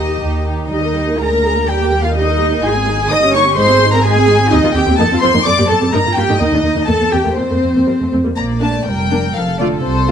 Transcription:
Already playing: D#2 D#3 D#4 G4 D#5
0.21 D#2 D#3 D#4 G4
0.46 D#4 G4
0.70 D#2 G3 D#4 G4 D#5
0.82 A#3 A#4
0.94 G3 G4
1.08 A#3 A#4
1.20 D2 G#3 G#4 A#4 A#5
1.32 A#3 A#4
1.44 G#3 G#4
1.56 A#3 A#4
1.68 D#2 G3 G4 G5
1.80 A#3 A#4
1.92 G3 G4
2.03 A#3 F4 A#4 F5
2.15 G3 D#4 G4 D#5
2.27 A#3 A#4
2.38 G3 G4
2.51 A#3 A#4
2.62 G#1 G#3 D#4 G#4 G#5
2.74 C4 G#4
2.86 G#3 D#4
2.98 C4 G#4
3.09 G1 A#3 D#4 D#5 D#6
3.21 C#4 G4
3.34 A#3 D#4 C#5 C#6
3.45 C#4 G4
3.57 G#1 G#3 D#4 C5 C6
3.69 C4 G#4
3.82 G#3 D#4
3.93 C4 G#4 A#4 A#5
4.04 G#3 D#4 G#4 G#5
4.17 C4 G#4
4.28 G#3 D#4
4.40 C4 G#4
4.51 D#2 C4 D#4 G4 D#5
4.63 D#2 A#3 F4
4.74 D#2 C4 G4 G5
4.86 D#2 C4 G4
4.97 F2 A#3 D#4 A4 A5
5.11 F2 C4 F4
5.21 F2 C4 F4 C5 C6
5.34 F2 A#3 D#4
5.44 F#2 C4 A4 D5 D6
5.57 F#2 A#3 G4
5.67 F#2 C4 A4 A5
5.81 F#2 C4 A4
5.92 G2 A3 D#4 A#4 A#5
6.04 G2 A#3 F4
6.15 G2 A#3 F4 G4 G5
6.28 G2 A3 D#4
6.38 D#2 A#3 D#4 D#5
6.52 D#2 A3 D4
6.64 D#2 A#3 D#4
6.75 D#2 A#3 D#4
6.87 E2 A3 A#3 A4 A5
6.99 E2 A#3 C4
7.11 E2 A#3 C4 G4 G5
7.24 E2 A3 A#3
7.36 F2 A#3 C4 C5
7.50 F2 A3 A#3
7.62 F2 A#3 C4
7.74 F2 A#3 C4
7.87 F2 G3 A#3
7.99 F2 A3 C4
8.12 F2 A3 C4
8.24 F2 G3 A#3
8.36 A#1 A#3 D5 A#5
8.61 A3 A#3 D4 A5
8.86 F1 G3 A#4 G5
9.10 A#3 D4
9.35 F1 F3 A4 F5
9.58 D3 A3 F4 D5
9.83 C2 C3 C5
10.08 A3 F4

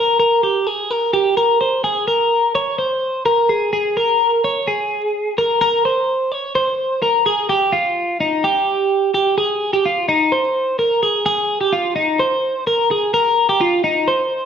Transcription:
Already playing: A#4
0.20 A#4
0.43 G4
0.67 G#4
0.91 A#4
1.13 G4
1.37 A#4
1.61 C5
1.84 G#4
2.08 A#4
2.55 C#5
2.78 C5
3.26 A#4
3.49 G#4
3.73 G#4
3.97 A#4
4.44 C#5
4.67 G#4
5.38 A#4
5.61 A#4
5.85 C5
6.32 C#5
6.55 C5
7.02 A#4
7.26 G#4
7.49 G4
7.73 F4
8.20 D#4
8.44 G4
9.14 G4
9.38 G#4
9.73 G4
9.86 F4
10.09 D#4
10.32 C5
10.79 A#4
11.03 G#4
11.26 G#4
11.61 G4
11.73 F4
11.96 D#4
12.20 C5
12.67 A#4
12.91 G#4
13.14 A#4
13.49 G4
13.61 F4
13.84 D#4
14.08 C5

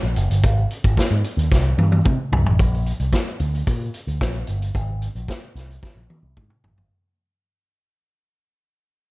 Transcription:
0.03 A#1
0.16 F#1, closed hi-hat
0.30 G1, closed hi-hat
0.44 G#1, kick, closed hi-hat
0.71 closed hi-hat
0.84 G#1, kick, closed hi-hat
0.97 muted picked electric bass stroke, kick, snare
1.11 G#2, closed hi-hat
1.24 closed hi-hat
1.37 D#2, closed hi-hat
1.52 C2, kick, snare
1.78 G2, high tom
1.92 high tom
2.05 C3, kick, mid tom
2.32 C2, floor tom
2.46 A1, floor tom
2.59 A#1, kick, closed hi-hat
2.74 closed hi-hat
2.86 closed hi-hat
3.00 C2, closed hi-hat
3.13 kick, snare
3.40 D2, closed hi-hat
3.55 closed hi-hat
3.67 A#2, kick, closed hi-hat
3.81 closed hi-hat
3.94 closed hi-hat
4.07 D2, closed hi-hat
4.21 A#1, kick, snare
4.47 G1, closed hi-hat
4.62 closed hi-hat
4.75 G#1, kick, closed hi-hat
5.02 closed hi-hat
5.15 A#1, closed hi-hat
5.28 kick, snare
5.43 closed hi-hat
5.55 C2, snare, closed hi-hat
5.71 closed hi-hat
5.83 kick, snare
5.96 A#1
6.10 high tom
6.23 C2
6.37 G#2, kick, mid tom
6.50 mid tom
6.64 G#1, floor tom
6.76 G1, floor tom

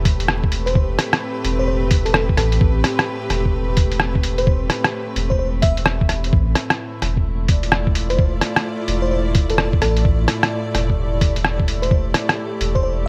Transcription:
Already playing: E1 A2 A3 C4 E4 G4 B4
0.05 kick, closed hi-hat
0.20 closed hi-hat
0.28 cross-stick
0.44 kick
0.52 closed hi-hat
0.66 C5, closed hi-hat
0.75 kick
0.99 cross-stick, closed hi-hat
1.13 cross-stick, closed hi-hat
1.45 E1, closed hi-hat
1.59 C5
1.68 C5
1.91 kick, closed hi-hat
2.05 A4, closed hi-hat
2.13 A4, cross-stick
2.29 kick
2.37 A1 A4, cross-stick, closed hi-hat
2.52 closed hi-hat
2.61 A1, kick
2.84 cross-stick, closed hi-hat
2.99 cross-stick, closed hi-hat
3.30 E1, cross-stick, closed hi-hat
3.46 kick
3.77 kick, closed hi-hat
3.92 closed hi-hat
4.00 cross-stick
4.15 kick
4.23 closed hi-hat
4.38 C5, closed hi-hat
4.47 kick
4.70 cross-stick, closed hi-hat
4.84 cross-stick, closed hi-hat
5.16 E1, closed hi-hat
5.30 C5, kick
5.39 C5
5.62 E1 E5, kick, closed hi-hat
5.77 closed hi-hat
5.86 cross-stick
6.01 kick
6.09 E1, cross-stick, closed hi-hat
6.24 closed hi-hat
6.33 A1 A2, kick
6.46 A3
6.55 cross-stick, closed hi-hat
6.67 E4, cross-stick, closed hi-hat
7.02 E1, cross-stick, closed hi-hat
7.17 kick
7.49 D5, kick, closed hi-hat
7.55 F4
7.63 closed hi-hat
7.72 cross-stick
7.87 kick
7.95 closed hi-hat
8.10 C5, closed hi-hat
8.19 kick
8.41 cross-stick, closed hi-hat
8.56 cross-stick, closed hi-hat
8.88 E1, closed hi-hat
9.02 C5
9.11 C5
9.35 kick, closed hi-hat
9.50 A4, closed hi-hat
9.58 A4, cross-stick
9.73 kick
9.81 A1 A4, cross-stick, closed hi-hat
9.97 closed hi-hat
10.05 A1, kick
10.28 cross-stick, closed hi-hat
10.43 cross-stick, closed hi-hat
10.75 E1, cross-stick, closed hi-hat
10.90 kick
10.96 G4
11.21 kick, closed hi-hat
11.36 closed hi-hat
11.44 cross-stick
11.60 kick
11.68 closed hi-hat
11.82 C5, closed hi-hat
11.91 kick
12.14 cross-stick, closed hi-hat
12.29 cross-stick, closed hi-hat
12.61 E1, closed hi-hat
12.75 C5, kick
12.83 C5

